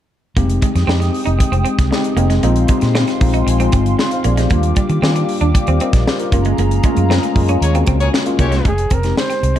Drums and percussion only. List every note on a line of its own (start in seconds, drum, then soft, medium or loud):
0.37 kick loud
0.37 closed hi-hat medium
0.50 closed hi-hat medium
0.62 kick medium
0.62 closed hi-hat medium
0.76 snare soft
0.76 closed hi-hat soft
0.89 snare loud
1.02 snare soft
1.02 closed hi-hat soft
1.14 open hi-hat medium
1.27 closed hi-hat soft
1.40 kick medium
1.40 closed hi-hat loud
1.53 closed hi-hat soft
1.66 closed hi-hat medium
1.79 kick medium
1.79 snare soft
1.79 closed hi-hat medium
1.92 snare loud
2.04 closed hi-hat soft
2.17 closed hi-hat medium
2.30 snare soft
2.30 closed hi-hat soft
2.43 closed hi-hat medium
2.56 closed hi-hat medium
2.68 kick medium
2.68 closed hi-hat medium
2.81 snare soft
2.81 closed hi-hat soft
2.95 snare loud
3.08 snare soft
3.08 closed hi-hat soft
3.21 kick medium
3.21 open hi-hat medium
3.34 closed hi-hat soft
3.48 closed hi-hat loud
3.60 closed hi-hat soft
3.72 kick medium
3.72 closed hi-hat medium
3.86 closed hi-hat medium
3.99 snare loud
4.11 closed hi-hat soft
4.24 closed hi-hat medium
4.37 snare soft
4.37 closed hi-hat medium
4.50 kick medium
4.50 closed hi-hat medium
4.63 closed hi-hat medium
4.76 kick medium
4.76 closed hi-hat medium
4.89 closed hi-hat soft
5.04 snare loud
5.16 closed hi-hat soft
5.29 open hi-hat medium
5.41 closed hi-hat soft
5.55 kick medium
5.55 closed hi-hat medium
5.67 closed hi-hat soft
5.80 closed hi-hat medium
5.93 kick medium
5.93 snare soft
5.93 closed hi-hat medium
6.07 snare loud
6.19 closed hi-hat medium
6.32 kick medium
6.32 closed hi-hat medium
6.45 closed hi-hat soft
6.58 closed hi-hat medium
6.71 closed hi-hat medium
6.83 kick medium
6.83 closed hi-hat medium
6.97 closed hi-hat soft
7.11 snare loud
7.23 closed hi-hat medium
7.36 kick medium
7.36 open hi-hat medium
7.48 closed hi-hat soft
7.62 closed hi-hat loud
7.75 closed hi-hat soft
7.87 kick medium
7.87 closed hi-hat medium
8.00 closed hi-hat medium
8.14 snare loud
8.26 closed hi-hat soft
8.39 kick medium
8.39 closed hi-hat medium
8.52 snare soft
8.52 closed hi-hat soft
8.65 kick medium
8.65 closed hi-hat medium
8.78 closed hi-hat medium
8.90 kick medium
8.90 closed hi-hat medium
9.03 snare soft
9.03 closed hi-hat soft
9.17 snare loud
9.30 snare soft
9.30 closed hi-hat soft
9.43 closed hi-hat medium
9.56 closed hi-hat soft